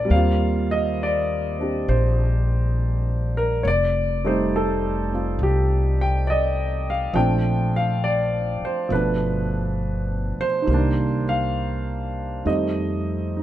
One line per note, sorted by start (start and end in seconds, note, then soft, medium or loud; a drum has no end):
0.00 0.11 G#3 soft
0.00 0.11 C4 soft
0.00 0.11 D4 soft
0.00 0.12 F4 soft
0.00 0.13 A#4 medium
0.00 0.13 D5 medium
0.05 3.62 G3 medium
0.05 3.64 A#3 soft
0.10 1.84 D#2 medium
0.10 1.58 C4 soft
0.10 0.73 F5 medium
0.16 3.68 F4 medium
0.71 1.01 D#5 medium
1.03 1.93 D5 medium
1.59 3.65 C4 soft
1.59 3.65 D4 soft
1.59 3.66 G4 soft
1.89 3.61 A#1 medium
1.89 3.33 C5 medium
3.37 3.62 A#4 medium
3.63 5.36 F1 medium
3.63 3.67 C#5 medium
3.68 4.22 D5 medium
4.25 7.15 G3 medium
4.25 7.14 A3 medium
4.25 5.10 C4 soft
4.25 7.16 D#4 medium
4.25 4.52 C5 medium
4.56 5.44 A4 medium
5.11 7.14 C4 soft
5.11 7.16 F4 soft
5.39 7.10 C2 medium
5.43 6.02 G4 medium
6.01 6.22 G5 medium
6.27 6.30 D5 medium
6.27 6.90 D#5 medium
6.90 7.17 F5 medium
7.13 8.58 A#1 medium
7.13 8.87 F3 medium
7.13 8.89 A3 soft
7.13 8.91 C4 soft
7.13 8.91 D4 medium
7.13 7.76 G5 medium
7.76 8.04 F5 medium
8.04 8.59 D5 medium
8.62 8.93 C5 medium
8.62 muted upright bass stroke soft
8.89 10.35 G1 medium
8.89 10.68 B2 soft
8.89 10.66 F3 soft
8.89 10.67 A3 soft
8.89 10.44 B4 medium
8.94 10.69 D4 soft
10.38 11.24 C5 medium
10.38 muted upright bass stroke soft
10.62 12.42 D#3 medium
10.67 12.41 C2 medium
10.67 12.44 G3 soft
10.67 12.46 A#3 soft
10.74 12.48 D4 medium
11.29 12.49 F5 medium
12.45 13.43 F2 medium
12.45 13.43 D#3 soft
12.45 13.43 G3 soft
12.45 13.43 A3 soft
12.45 13.43 C4 soft
12.45 13.43 D#5 medium
13.37 13.43 D#4 soft